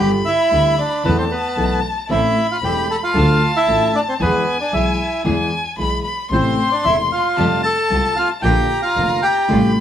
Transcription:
Already playing: grand piano G1 D3 B3, string section B3 D4
0.00 double bass G1, grand piano G2 G3 G4, string section G4, bandoneon G4, violin B5
0.25 bandoneon E4 E5
0.51 grand piano D2 D3 G3 B3 G4, double bass D2, string section B3 D4 G4
0.78 bandoneon D4 D5
1.04 grand piano E2 E3 A3 B3 A4, double bass E2, string section B3 E4 A4, bandoneon B3 B4, violin A5
1.18 bandoneon C4 C5
1.31 bandoneon B3 B4
1.56 grand piano B1 B2 E3 A3 B3 A4, double bass B1, string section B3 E4 A4
2.09 grand piano A1 A2 E3 A3 C4 A4, double bass A1, string section C4 E4 A4, bandoneon E4 E5, violin B5
2.52 bandoneon F4 F5
2.62 double bass E1, grand piano E1 E2 E3 A3 C4 A4, string section C4 E4 A4, bandoneon G4 G5
2.91 bandoneon A4 A5
3.04 bandoneon F4 F5
3.14 grand piano D2 D3 F3 A3 D4 A4, double bass D2, string section D4 F4 A4, violin A5
3.56 bandoneon E4 E5
3.67 double bass A1, grand piano A1 A2 F3 A3 D4 A4, string section D4 F4 A4
3.95 bandoneon D4 D5
4.08 bandoneon C4 C5
4.19 double bass E2, grand piano E2 E3 G#3 B3 G#4, string section B3 E4 G#4, bandoneon B3 B4, violin G#5
4.61 bandoneon D4 D5
4.72 double bass B1, grand piano B1 B2 E3 G#3 B3 G#4, string section B3 E4 G#4, bandoneon E4 E5
5.25 grand piano E2 E3 G#3 B3 G#4, double bass E2, string section B3 E4 G#4, violin G#5
5.78 double bass B1, grand piano B1 B2 E3 G#3 B3 G#4, string section B3 E4 G#4, violin B5
6.04 violin B5
6.31 double bass A1, grand piano A1 A2 C3 A3 B3 E4, string section B3 C4 A4, bandoneon C4 C5, violin C6
6.72 bandoneon D4 D5
6.84 double bass E1, grand piano E1 E2 C3 A3 B3 E4, string section B3 C4 A4, bandoneon E4 E5
7.12 bandoneon F4 F5
7.37 grand piano F2 C3 F3 G3 A3 F4, double bass F2, string section A3 F4 G4, violin A5
7.63 bandoneon A4 A5
7.90 grand piano C2 C3 G3 A3 F4, double bass C2, string section A3 F4 G4
8.16 bandoneon F4 F5
8.42 double bass A#1, grand piano A#1 A#2 D3 F3 A#3 F4, string section A#3 D4 F4, bandoneon G4 G5, violin A#5
8.82 bandoneon F4 F5
8.96 double bass F1, grand piano F1 F2 D3 F3 A#3 F4, string section A#3 D4 F4
9.22 bandoneon G4 G5
9.48 grand piano A1 A2 C3 G3 A3 F4, double bass A1, string section G3 A3 F4, violin B5

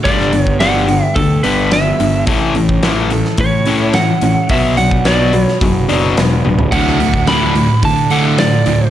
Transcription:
0.04 picked electric bass G1, distorted electric guitar G2 D3 G3, steel-string acoustic guitar G2, lead electric guitar D5, kick, open hi-hat
0.20 snare
0.33 distorted electric guitar G2 D3, steel-string acoustic guitar B3, open hi-hat
0.42 lead electric guitar C#5
0.47 kick
0.60 distorted electric guitar G2 D3 G3, steel-string acoustic guitar D4, lead electric guitar F#5, snare, open hi-hat
0.88 distorted electric guitar G2 D3, steel-string acoustic guitar G4, open hi-hat
1.05 lead electric guitar E5
1.16 picked electric bass D2, distorted electric guitar G2 D3, lead electric guitar A4, kick, open hi-hat
1.43 picked electric bass G1, distorted electric guitar G2 D3 G3, steel-string acoustic guitar B3, lead electric guitar B4, open hi-hat
1.71 distorted electric guitar G2 D3, lead electric guitar E5, snare, open hi-hat
1.99 picked electric bass G1, distorted electric guitar G2 D3, steel-string acoustic guitar B3, open hi-hat
2.27 picked electric bass A1, distorted electric guitar A2 E3 A3, steel-string acoustic guitar A2, kick, open hi-hat
2.55 distorted electric guitar A2 E3, steel-string acoustic guitar C#4, open hi-hat
2.69 kick
2.83 distorted electric guitar A2 E3 A3, steel-string acoustic guitar E4, snare, open hi-hat
3.10 distorted electric guitar A2 E3, steel-string acoustic guitar A4, open hi-hat
3.25 snare
3.38 distorted electric guitar A2 E3, picked electric bass A2, steel-string acoustic guitar E4, lead electric guitar C#5, kick, open hi-hat
3.65 distorted electric guitar A2 E3 A3, steel-string acoustic guitar C#4, open hi-hat
3.93 distorted electric guitar A2 E3, steel-string acoustic guitar A4, lead electric guitar F#5, snare, open hi-hat
4.21 picked electric bass A1, distorted electric guitar A2 E3, steel-string acoustic guitar C#4, open hi-hat
4.49 picked electric bass B1, steel-string acoustic guitar B2, distorted electric guitar B2 F#3 B3, lead electric guitar E5, kick, open hi-hat
4.77 distorted electric guitar B2 F#3, steel-string acoustic guitar D4, lead electric guitar F#5, open hi-hat
4.91 kick
5.05 distorted electric guitar B2 F#3 B3, steel-string acoustic guitar F#4, lead electric guitar D5, snare, open hi-hat
5.32 distorted electric guitar B2 F#3, steel-string acoustic guitar B4, open hi-hat
5.43 lead electric guitar C#5
5.48 snare
5.60 picked electric bass F#1, distorted electric guitar B2 F#3, steel-string acoustic guitar F#4, kick, open hi-hat
5.89 picked electric bass F#1, distorted electric guitar B2 F#3 B3, steel-string acoustic guitar D4, open hi-hat
6.16 picked electric bass E1, distorted electric guitar B2 F#3, steel-string acoustic guitar B4, snare, open hi-hat
6.44 picked electric bass D1, distorted electric guitar B2 F#3, steel-string acoustic guitar D4, high tom
6.59 floor tom
6.72 picked electric bass D2, distorted electric guitar D2 A2 D3, lead electric guitar F#5, kick, open hi-hat, crash
6.87 snare
7.00 distorted electric guitar D2 A2, open hi-hat
7.14 kick
7.27 distorted electric guitar D2 A2 D3, lead electric guitar B5, snare, open hi-hat
7.55 distorted electric guitar D2 A2, open hi-hat
7.83 distorted electric guitar D2 A2, picked electric bass D3, lead electric guitar A5, kick, open hi-hat
8.10 distorted electric guitar D2 A2 D3, lead electric guitar F#5, open hi-hat
8.38 distorted electric guitar D2 A2, lead electric guitar D5, snare, open hi-hat
8.66 distorted electric guitar D2 A2, picked electric bass D2, open hi-hat

